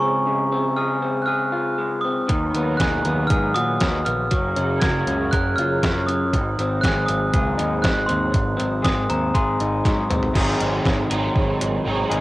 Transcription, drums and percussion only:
2.29 kick loud
2.29 closed hi-hat medium
2.55 closed hi-hat medium
2.80 kick loud
2.80 snare loud
2.80 closed hi-hat medium
3.05 closed hi-hat medium
3.30 kick loud
3.30 closed hi-hat medium
3.56 closed hi-hat medium
3.80 kick loud
3.80 snare loud
3.80 closed hi-hat medium
4.06 closed hi-hat medium
4.31 kick medium
4.31 closed hi-hat medium
4.56 closed hi-hat medium
4.82 kick loud
4.82 snare loud
4.82 closed hi-hat medium
5.07 closed hi-hat medium
5.33 kick loud
5.33 closed hi-hat medium
5.58 closed hi-hat medium
5.83 kick loud
5.83 snare loud
5.83 closed hi-hat medium
6.09 closed hi-hat medium
6.33 kick loud
6.33 closed hi-hat medium
6.59 closed hi-hat medium
6.83 kick loud
6.83 snare loud
6.83 closed hi-hat medium
7.08 closed hi-hat medium
7.34 kick loud
7.34 closed hi-hat medium
7.59 closed hi-hat medium
7.84 kick loud
7.84 snare loud
7.84 closed hi-hat medium
8.09 closed hi-hat medium
8.34 kick medium
8.34 closed hi-hat medium
8.60 closed hi-hat medium
8.85 kick loud
8.85 snare loud
8.85 closed hi-hat medium
9.10 closed hi-hat medium
9.35 kick loud
9.35 closed hi-hat medium
9.60 closed hi-hat medium
9.85 kick loud
9.85 snare medium
9.85 closed hi-hat medium
10.11 closed hi-hat medium
10.11 mid tom medium
10.23 floor tom medium
10.35 kick loud
10.35 crash loud
10.60 closed hi-hat loud
10.86 kick loud
10.86 snare loud
11.11 closed hi-hat loud
11.36 kick loud
11.61 closed hi-hat loud
12.12 closed hi-hat loud

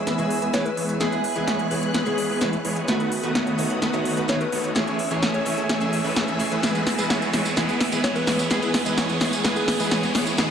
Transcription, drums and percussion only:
0.07 snare soft
0.07 closed hi-hat medium
0.19 closed hi-hat soft
0.30 open hi-hat medium
0.42 closed hi-hat medium
0.54 snare medium
0.54 closed hi-hat medium
0.66 closed hi-hat soft
0.77 open hi-hat loud
0.89 closed hi-hat medium
1.01 snare soft
1.01 closed hi-hat medium
1.12 closed hi-hat soft
1.24 open hi-hat loud
1.36 closed hi-hat soft
1.48 snare medium
1.48 closed hi-hat medium
1.59 closed hi-hat soft
1.71 open hi-hat loud
1.83 closed hi-hat medium
1.94 snare medium
1.94 closed hi-hat medium
2.06 closed hi-hat soft
2.18 open hi-hat loud
2.30 open hi-hat medium
2.41 snare medium
2.41 closed hi-hat medium
2.53 closed hi-hat soft
2.65 open hi-hat loud
2.76 closed hi-hat medium
2.88 snare medium
2.88 closed hi-hat medium
3.00 closed hi-hat soft
3.12 open hi-hat loud
3.23 closed hi-hat soft
3.35 snare medium
3.35 closed hi-hat medium
3.47 closed hi-hat soft
3.59 open hi-hat loud
3.70 closed hi-hat soft
3.82 snare medium
3.82 closed hi-hat medium
3.94 closed hi-hat soft
4.05 open hi-hat loud
4.17 closed hi-hat medium
4.29 snare medium
4.29 closed hi-hat medium
4.41 closed hi-hat soft
4.52 open hi-hat loud
4.64 closed hi-hat medium
4.76 snare medium
4.76 closed hi-hat medium
4.87 closed hi-hat soft
4.99 open hi-hat loud
5.11 closed hi-hat soft
5.23 snare medium
5.23 closed hi-hat medium
5.34 closed hi-hat soft
5.46 open hi-hat loud
5.58 closed hi-hat medium
5.69 snare medium
5.69 closed hi-hat medium
5.81 closed hi-hat soft
5.93 open hi-hat loud
6.05 open hi-hat medium
6.16 snare medium
6.16 closed hi-hat medium
6.28 closed hi-hat soft
6.40 open hi-hat loud
6.52 closed hi-hat soft
6.63 snare medium
6.63 closed hi-hat medium
6.63 tambourine medium
6.75 closed hi-hat soft
6.75 tambourine soft
6.87 snare medium
6.87 open hi-hat loud
6.98 closed hi-hat soft
6.98 tambourine medium
7.10 snare medium
7.10 closed hi-hat medium
7.10 tambourine medium
7.22 closed hi-hat soft
7.22 tambourine soft
7.33 snare medium
7.33 open hi-hat loud
7.45 closed hi-hat medium
7.45 tambourine medium
7.57 snare medium
7.57 closed hi-hat medium
7.57 tambourine medium
7.69 closed hi-hat soft
7.69 tambourine soft
7.81 snare medium
7.81 open hi-hat loud
7.92 closed hi-hat medium
7.92 tambourine medium
8.04 snare medium
8.04 closed hi-hat medium
8.04 tambourine medium
8.16 closed hi-hat soft
8.16 tambourine soft
8.27 snare medium
8.27 open hi-hat loud
8.39 closed hi-hat soft
8.39 tambourine medium
8.51 snare medium
8.51 closed hi-hat medium
8.51 tambourine medium
8.62 closed hi-hat soft
8.62 tambourine soft
8.74 snare medium
8.74 open hi-hat loud
8.86 closed hi-hat medium
8.86 tambourine medium
8.98 snare medium
8.98 closed hi-hat medium
8.98 tambourine medium
9.09 closed hi-hat soft
9.09 tambourine soft
9.21 snare medium
9.21 open hi-hat loud
9.33 closed hi-hat medium
9.33 tambourine medium
9.44 snare medium
9.44 closed hi-hat medium
9.44 tambourine medium
9.56 closed hi-hat soft
9.56 tambourine soft
9.68 snare medium
9.68 open hi-hat loud
9.80 open hi-hat medium
9.80 tambourine medium
9.91 snare medium
9.91 closed hi-hat medium
9.91 tambourine medium
10.03 closed hi-hat soft
10.03 tambourine soft
10.15 snare medium
10.15 open hi-hat loud
10.27 closed hi-hat medium
10.27 tambourine medium
10.38 snare medium
10.38 closed hi-hat medium
10.38 tambourine medium

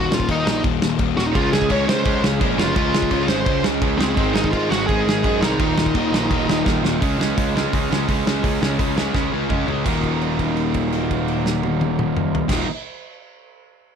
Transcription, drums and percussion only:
0.12 snare loud
0.20 kick medium
0.29 kick loud
0.29 crash medium
0.47 snare loud
0.64 kick loud
0.64 crash medium
0.82 snare loud
0.99 kick loud
0.99 crash medium
1.18 snare medium
1.35 kick loud
1.35 crash medium
1.53 snare loud
1.62 kick medium
1.70 kick loud
1.70 crash medium
1.89 snare loud
2.05 kick loud
2.05 crash medium
2.24 snare loud
2.41 kick loud
2.41 crash medium
2.59 snare loud
2.76 kick loud
2.76 crash medium
2.94 snare loud
3.02 kick medium
3.11 kick loud
3.11 crash medium
3.28 snare loud
3.46 kick loud
3.46 crash medium
3.64 snare loud
3.82 kick loud
3.82 crash medium
4.01 snare loud
4.17 kick loud
4.17 crash medium
4.36 snare loud
4.44 kick medium
4.53 kick loud
4.53 crash medium
4.72 snare loud
4.89 kick loud
4.89 crash medium
5.09 snare loud
5.24 kick loud
5.24 crash medium
5.43 snare loud
5.59 kick loud
5.59 crash medium
5.78 snare loud
5.86 kick medium
5.94 kick loud
5.94 crash medium
6.14 snare loud
6.31 kick loud
6.31 crash medium
6.50 snare loud
6.66 kick loud
6.66 snare medium
6.85 snare loud
7.02 kick loud
7.02 open hi-hat medium
7.21 snare loud
7.38 kick loud
7.38 open hi-hat medium
7.57 snare loud
7.73 kick loud
7.73 open hi-hat medium
7.93 snare loud
8.09 kick loud
8.09 open hi-hat medium
8.27 snare loud
8.44 kick loud
8.44 open hi-hat medium
8.63 snare loud
8.79 kick loud
8.79 open hi-hat medium
8.98 snare loud
9.15 kick loud
9.15 snare medium
9.50 kick loud
9.50 mid tom medium
9.68 floor tom medium
9.86 kick loud
9.86 crash medium
10.04 kick medium
10.04 crash soft
10.22 crash soft
10.39 kick medium
10.39 crash soft
10.57 crash soft
10.74 kick medium
10.74 crash soft
10.92 crash soft
11.11 kick medium
11.11 crash medium
11.28 crash medium
11.46 snare medium
11.63 high tom medium
11.81 high tom medium
11.99 mid tom medium
12.17 mid tom loud
12.35 floor tom loud
12.49 kick loud
12.49 snare medium
12.49 crash loud

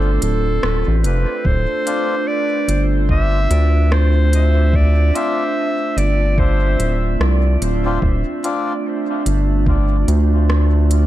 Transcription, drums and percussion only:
0.22 closed hi-hat medium
0.63 cross-stick medium
1.04 closed hi-hat soft
1.45 kick loud
1.87 closed hi-hat medium
2.69 closed hi-hat medium
3.09 kick loud
3.51 closed hi-hat soft
3.92 cross-stick medium
4.33 closed hi-hat soft
4.73 kick loud
5.15 closed hi-hat soft
5.98 closed hi-hat medium
6.38 kick loud
6.80 closed hi-hat soft
7.21 cross-stick medium
7.62 closed hi-hat soft
8.02 kick loud
8.44 closed hi-hat medium
9.26 closed hi-hat medium
9.66 kick loud
10.08 closed hi-hat soft
10.50 cross-stick medium
10.91 closed hi-hat medium

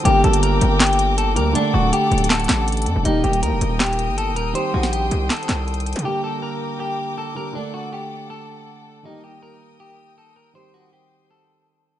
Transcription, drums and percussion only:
0.05 closed hi-hat medium
0.24 closed hi-hat soft
0.24 open hi-hat medium
0.33 closed hi-hat medium
0.43 closed hi-hat medium
0.61 closed hi-hat medium
0.80 snare loud
0.80 clap loud
0.80 closed hi-hat medium
0.87 closed hi-hat medium
0.93 closed hi-hat soft
0.99 closed hi-hat medium
1.18 closed hi-hat medium
1.36 closed hi-hat medium
1.55 closed hi-hat medium
1.93 closed hi-hat medium
2.12 closed hi-hat soft
2.18 closed hi-hat medium
2.24 closed hi-hat medium
2.30 snare loud
2.30 clap loud
2.30 closed hi-hat medium
2.35 closed hi-hat medium
2.40 closed hi-hat medium
2.44 closed hi-hat medium
2.49 snare loud
2.49 clap medium
2.49 closed hi-hat medium
2.68 closed hi-hat medium
2.72 closed hi-hat medium
2.77 closed hi-hat medium
2.82 closed hi-hat medium
2.86 closed hi-hat medium
3.05 closed hi-hat medium
3.24 closed hi-hat soft
3.33 closed hi-hat medium
3.43 closed hi-hat medium
3.61 closed hi-hat medium
3.80 snare loud
3.80 clap medium
3.80 closed hi-hat medium
3.86 closed hi-hat medium
3.93 closed hi-hat soft
3.99 closed hi-hat medium
4.18 closed hi-hat medium
4.36 closed hi-hat medium
4.55 closed hi-hat medium
4.83 snare medium
4.93 closed hi-hat medium
5.11 closed hi-hat medium
5.30 snare loud
5.30 clap loud
5.30 closed hi-hat medium
5.36 closed hi-hat medium
5.43 closed hi-hat medium
5.49 snare loud
5.49 clap medium
5.49 closed hi-hat medium
5.68 closed hi-hat soft
5.74 closed hi-hat medium
5.80 closed hi-hat medium
5.86 closed hi-hat medium
5.93 closed hi-hat medium
5.96 closed hi-hat medium
5.99 closed hi-hat medium

